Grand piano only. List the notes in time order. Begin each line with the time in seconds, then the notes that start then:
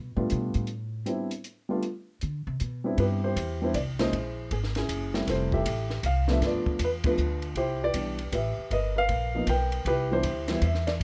0.16 G3 A3 B3 D4 F4
1.06 G3 B3 C4 D4 E4
1.69 G3 A3 B3 D4 F4
2.84 G3 B3 C4 D4 E4
3.00 E4 G4 B4
3.24 E4 G4 C5
3.62 G3 B3 D4 E4 C5
3.75 D5
4.00 G#3 A#3 C#4 D#4 E4 G#4 C5
4.52 G#4
4.77 C#4 E4 G#4
5.14 G3 A3 C4 E4
5.29 E4 A4 C5
5.53 G4 A4 E5
6.06 F5
6.29 F3 A3 B3 D4
6.33 E5
6.45 F4 B4 D5
6.84 B4
7.05 F3 A3 B3 D4 F4 B4
7.57 E4 G4 C5
7.84 G4 B4 D5
7.94 E3 G3 B3 D4
8.33 G4 B4 E5
8.71 A#4 B4 D#5
8.96 A#4 B4 F5
9.35 F3 A#3 B3 D#4
9.49 A#4 B4 G5
9.87 E4 G4 B4
10.11 E3 G3 B3 D4 E4 G4 C5
10.49 E3 G3 B3 E4
10.65 E5
10.87 D5